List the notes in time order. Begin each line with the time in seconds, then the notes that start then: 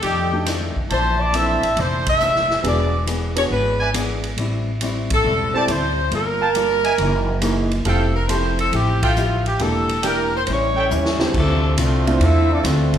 0.02 F2 D#3 A3 D4 G4 A4 D5 D#5 G5, ride
0.33 A3 D4 D#4 G4
0.46 F2 D#3 A3 D4, snare, hi-hat pedal, ride
0.76 muted upright bass stroke, kick
0.89 A#1 A#2 E3 A3 D4 C5 D5 E5 A5, ride
1.19 D5
1.33 A#2 E3 A3 C4 D4 E4 A4 E5, hi-hat pedal, ride
1.63 A1, ride
1.77 F1 A#2 E3 A3 D4 C5, ride
2.06 E5, kick, ride
2.20 A#2 E3 A3 D4, hi-hat pedal
2.36 snare
2.51 snare
2.63 E1 E3 B3 D4 F#4 G#4, ride
2.67 D5
3.06 E3 B3 D4 G#4, hi-hat pedal, ride
3.36 B3 D4 F#4 G#4 C#5, ride
3.50 G#1 E3 B3 D4 G#4 B4
3.80 B4 D5 E5 G#5
3.94 E3 B3 D4 G#4, hi-hat pedal, ride
4.24 ride
4.37 A1 A2 G3 C4 E4, ride
4.81 A2 G3 C4 E4, hi-hat pedal, ride
5.10 A4, kick, ride
5.24 E1 A2 G3 C4 E4
5.54 C4 E4 G4 A4 C5 D5 E5 G5 A5
5.67 D2 A2 G3 C4 E4 C5, hi-hat pedal, ride
6.11 G1 G3 A#3 F4 A4 A#4, ride
6.41 A#4 F5 G5 A5
6.55 G3 A#3 F4 A4, hi-hat pedal, ride
6.84 A#4 D#5 E5 G#5, ride
6.98 F#1 F#2 E3 A#3 D#4, ride
7.41 F#2 E3 A#3 D#4 E4 G#4, hi-hat pedal, ride
7.71 ride
7.85 F1 F3 A3 C4 E4 G4 A4 E5 F5 G5, ride
8.15 A#4
8.28 F3 A3 C4 E4 G4 A4 C5, hi-hat pedal, ride
8.59 A4, ride
8.72 A1 F3 A3 E4 G4, ride
9.03 F4 A4 E5 F5 G5, kick, ride
9.16 F3 A3 E4 G4, hi-hat pedal
9.46 G4, ride
9.59 E1 E3 A#3 D4 E4 G4 A4, ride
9.89 ride
10.03 E3 A#3 D4 E4 G4 A#4 D5 E5 G5, hi-hat pedal, ride
10.37 C5
10.46 A1 A2 E3 G3 C#4 C5, ride
10.50 E4 C#5
10.77 A4 C#5 E5 G5
10.90 D#2 A2 G3 C#4 E4, hi-hat pedal
11.05 snare
11.19 D3 A3 C4 E4 G4, snare
11.33 D2 D3 A3 C4 F4, kick, crash
11.38 C3 F3 A3 C4 D4 A4
11.77 C2 D3 F3 A3 C4 F4, hi-hat pedal, ride
11.82 A3 D4 F4 C5
12.07 A3 C4 D4 E4 F4, ride
12.19 E2 D3 A3 C4 E4 F4, ride
12.23 C4 F4 A4 E5
12.52 F3 A3 C4 D4 F4 A4 D5
12.63 D2 D3 F3 A3 C4 D4 F4 B4, snare, hi-hat pedal, ride
12.67 C5
12.94 kick, ride